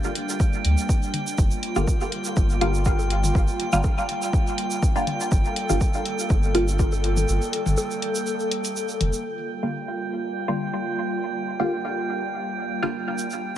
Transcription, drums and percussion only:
0.04 shaker soft
0.15 closed hi-hat medium
0.29 shaker medium
0.40 kick loud
0.40 shaker medium
0.53 shaker soft
0.65 closed hi-hat medium
0.78 shaker medium
0.89 kick loud
0.89 shaker medium
1.03 shaker soft
1.14 closed hi-hat medium
1.14 mid tom medium
1.27 shaker medium
1.38 kick loud
1.38 shaker medium
1.51 shaker soft
1.63 closed hi-hat medium
1.76 mid tom medium
1.76 shaker medium
1.88 kick loud
1.88 shaker medium
2.01 shaker soft
2.12 closed hi-hat medium
2.24 shaker medium
2.36 kick loud
2.36 low bongo medium
2.36 shaker medium
2.50 shaker soft
2.61 closed hi-hat medium
2.74 shaker medium
2.85 kick loud
2.85 shaker medium
2.99 low bongo medium
2.99 shaker soft
3.10 closed hi-hat medium
3.23 mid tom medium
3.23 shaker medium
3.35 kick loud
3.35 shaker medium
3.48 shaker soft
3.60 closed hi-hat medium
3.73 mid tom medium
3.73 shaker medium
3.83 kick loud
3.83 low bongo medium
3.83 shaker medium
3.98 shaker soft
4.09 closed hi-hat medium
4.22 shaker medium
4.33 kick loud
4.33 shaker medium
4.47 shaker soft
4.58 closed hi-hat medium
4.71 shaker medium
4.83 kick loud
4.83 shaker medium
4.96 shaker soft
5.07 closed hi-hat medium
5.07 mid tom medium
5.21 shaker medium
5.32 kick loud
5.32 shaker medium
5.45 shaker soft
5.56 closed hi-hat medium
5.70 mid tom medium
5.70 shaker medium
5.81 kick medium
5.81 shaker medium
5.94 shaker soft
6.05 closed hi-hat medium
6.19 shaker medium
6.29 kick loud
6.29 low bongo medium
6.29 shaker medium
6.43 shaker soft
6.55 closed hi-hat medium
6.68 shaker medium
6.79 kick loud
6.79 shaker medium
6.92 low bongo medium
6.92 shaker soft
7.04 closed hi-hat medium
7.17 mid tom medium
7.17 shaker medium
7.28 shaker medium
7.42 shaker soft
7.53 closed hi-hat medium
7.66 mid tom loud
7.66 shaker medium
7.77 low bongo medium
7.77 shaker medium
7.91 shaker soft
8.02 closed hi-hat medium
8.15 shaker medium
8.27 shaker medium
8.40 shaker soft
8.51 closed hi-hat medium
8.65 closed hi-hat soft
8.65 shaker medium
8.76 shaker medium
8.89 shaker soft
9.00 closed hi-hat medium
9.00 mid tom medium
9.13 shaker medium
13.18 shaker medium
13.30 shaker soft

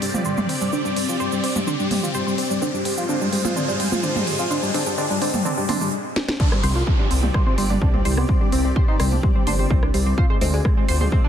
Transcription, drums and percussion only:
0.02 open hi-hat loud
0.14 mid tom medium
0.14 shaker medium
0.25 shaker medium
0.37 mid tom medium
0.37 shaker soft
0.49 open hi-hat medium
0.61 shaker medium
0.73 shaker medium
0.85 shaker soft
0.96 open hi-hat loud
1.09 shaker medium
1.20 shaker medium
1.32 shaker soft
1.44 open hi-hat medium
1.56 mid tom medium
1.56 shaker medium
1.67 shaker medium
1.79 shaker soft
1.91 mid tom medium
1.91 open hi-hat loud
2.04 shaker medium
2.14 shaker medium
2.28 shaker soft
2.38 open hi-hat medium
2.51 shaker medium
2.62 shaker medium
2.75 shaker soft
2.85 open hi-hat loud
2.98 shaker medium
3.09 shaker medium
3.21 shaker soft
3.33 open hi-hat medium
3.45 mid tom medium
3.45 shaker medium
3.57 shaker medium
3.69 shaker soft
3.80 open hi-hat loud
3.92 mid tom medium
3.92 shaker medium
4.03 shaker medium
4.16 mid tom medium
4.16 shaker soft
4.27 open hi-hat medium
4.39 shaker medium
4.51 shaker medium
4.63 shaker soft
4.74 open hi-hat loud
4.86 shaker medium
4.98 shaker medium
5.11 shaker soft
5.22 open hi-hat medium
5.34 mid tom medium
5.34 shaker medium
5.46 shaker medium
5.57 shaker soft
5.69 mid tom loud
5.69 open hi-hat loud
5.81 shaker medium
6.16 snare medium
6.28 snare medium
6.40 kick loud
6.40 crash loud
6.52 cross-stick medium
6.63 open hi-hat loud
6.87 kick loud
7.11 open hi-hat loud
7.23 mid tom loud
7.34 kick loud
7.34 cross-stick soft
7.58 open hi-hat loud
7.70 mid tom medium
7.82 kick loud
7.94 mid tom medium
8.05 open hi-hat loud
8.17 cross-stick soft
8.29 kick loud
8.52 open hi-hat loud
8.76 kick loud
9.00 cross-stick soft
9.00 open hi-hat loud
9.12 mid tom medium
9.23 kick loud
9.47 mid tom medium
9.47 open hi-hat loud
9.70 kick loud
9.83 cross-stick soft
9.94 open hi-hat loud
10.18 kick loud
10.41 open hi-hat loud
10.65 kick loud
10.65 cross-stick soft
10.88 open hi-hat loud
11.01 mid tom medium
11.12 kick loud

